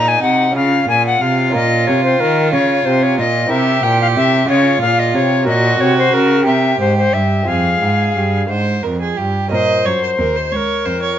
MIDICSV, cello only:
0, 0, Header, 1, 2, 480
1, 0, Start_track
1, 0, Key_signature, -4, "minor"
1, 0, Tempo, 655738
1, 1130, Time_signature, 6, 3, 24, 8
1, 4490, Tempo, 674157
1, 8089, End_track
2, 0, Start_track
2, 0, Title_t, "Cello"
2, 0, Program_c, 0, 42
2, 0, Note_on_c, 0, 46, 66
2, 161, Note_off_c, 0, 46, 0
2, 166, Note_on_c, 0, 48, 66
2, 401, Note_off_c, 0, 48, 0
2, 404, Note_on_c, 0, 49, 74
2, 640, Note_off_c, 0, 49, 0
2, 651, Note_on_c, 0, 46, 72
2, 885, Note_off_c, 0, 46, 0
2, 890, Note_on_c, 0, 48, 70
2, 1134, Note_on_c, 0, 46, 77
2, 1145, Note_off_c, 0, 48, 0
2, 1375, Note_on_c, 0, 48, 70
2, 1386, Note_off_c, 0, 46, 0
2, 1609, Note_off_c, 0, 48, 0
2, 1613, Note_on_c, 0, 51, 74
2, 1849, Note_on_c, 0, 49, 76
2, 1860, Note_off_c, 0, 51, 0
2, 2086, Note_off_c, 0, 49, 0
2, 2090, Note_on_c, 0, 48, 76
2, 2327, Note_on_c, 0, 46, 68
2, 2338, Note_off_c, 0, 48, 0
2, 2562, Note_off_c, 0, 46, 0
2, 2566, Note_on_c, 0, 48, 78
2, 2801, Note_off_c, 0, 48, 0
2, 2807, Note_on_c, 0, 46, 72
2, 3047, Note_on_c, 0, 48, 78
2, 3058, Note_off_c, 0, 46, 0
2, 3276, Note_off_c, 0, 48, 0
2, 3280, Note_on_c, 0, 49, 81
2, 3516, Note_off_c, 0, 49, 0
2, 3522, Note_on_c, 0, 46, 74
2, 3762, Note_on_c, 0, 48, 70
2, 3773, Note_off_c, 0, 46, 0
2, 4003, Note_on_c, 0, 46, 78
2, 4014, Note_off_c, 0, 48, 0
2, 4241, Note_off_c, 0, 46, 0
2, 4246, Note_on_c, 0, 48, 70
2, 4484, Note_off_c, 0, 48, 0
2, 4487, Note_on_c, 0, 49, 76
2, 4726, Note_on_c, 0, 48, 72
2, 4737, Note_off_c, 0, 49, 0
2, 4957, Note_off_c, 0, 48, 0
2, 4961, Note_on_c, 0, 44, 66
2, 5197, Note_off_c, 0, 44, 0
2, 5204, Note_on_c, 0, 43, 62
2, 5441, Note_off_c, 0, 43, 0
2, 5446, Note_on_c, 0, 41, 69
2, 5679, Note_off_c, 0, 41, 0
2, 5683, Note_on_c, 0, 44, 61
2, 5923, Note_off_c, 0, 44, 0
2, 5927, Note_on_c, 0, 43, 67
2, 6165, Note_off_c, 0, 43, 0
2, 6171, Note_on_c, 0, 44, 60
2, 6410, Note_off_c, 0, 44, 0
2, 6417, Note_on_c, 0, 41, 60
2, 6656, Note_off_c, 0, 41, 0
2, 6662, Note_on_c, 0, 43, 55
2, 6898, Note_off_c, 0, 43, 0
2, 6905, Note_on_c, 0, 46, 58
2, 7125, Note_off_c, 0, 46, 0
2, 7140, Note_on_c, 0, 42, 53
2, 7362, Note_off_c, 0, 42, 0
2, 7379, Note_on_c, 0, 39, 60
2, 7600, Note_off_c, 0, 39, 0
2, 7615, Note_on_c, 0, 37, 58
2, 7836, Note_off_c, 0, 37, 0
2, 7854, Note_on_c, 0, 41, 56
2, 8074, Note_off_c, 0, 41, 0
2, 8089, End_track
0, 0, End_of_file